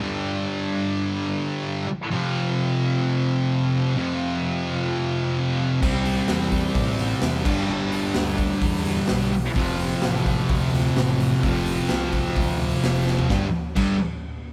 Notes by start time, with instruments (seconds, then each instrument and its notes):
0.00 distorted electric guitar G2 D3 G3
2.11 distorted electric guitar F2 C3 F3
3.96 distorted electric guitar F2 C3 F3
5.82 picked electric bass C2, distorted electric guitar C3 G3 C4, kick, crash
6.05 open hi-hat
6.28 picked electric bass E2, snare, open hi-hat
6.52 kick, open hi-hat
6.75 picked electric bass A1, kick, open hi-hat
6.98 snare, open hi-hat
7.22 picked electric bass E2, snare, open hi-hat
7.44 picked electric bass G1, distorted electric guitar G2 D3 G3, kick, crash
7.68 picked electric bass G1
7.92 open hi-hat
8.15 picked electric bass D2, snare, open hi-hat
8.38 kick, open hi-hat
8.62 picked electric bass E2, kick, open hi-hat
8.85 snare, open hi-hat
9.08 picked electric bass B1, snare, open hi-hat
9.21 snare
9.33 open hi-hat
9.55 picked electric bass F1, distorted electric guitar F2 C3 F3, kick, open hi-hat
9.80 open hi-hat
10.02 picked electric bass A1, snare, open hi-hat
10.26 kick, open hi-hat
10.49 picked electric bass D2, kick, open hi-hat
10.74 snare, open hi-hat
10.97 picked electric bass A1, snare, open hi-hat
11.20 open hi-hat
11.43 picked electric bass F1, distorted electric guitar F2 C3, kick, open hi-hat
11.47 distorted electric guitar F3
11.66 open hi-hat
11.89 picked electric bass C2, snare, open hi-hat
12.12 kick, open hi-hat
12.36 picked electric bass D2, kick, open hi-hat
12.60 open hi-hat
12.84 picked electric bass F1, snare, open hi-hat
12.96 snare
13.07 snare
13.19 floor tom
13.29 picked electric bass G1, distorted electric guitar G2 D3 G3, kick, snare
13.76 picked electric bass G1, distorted electric guitar G2 D3 G3, kick, crash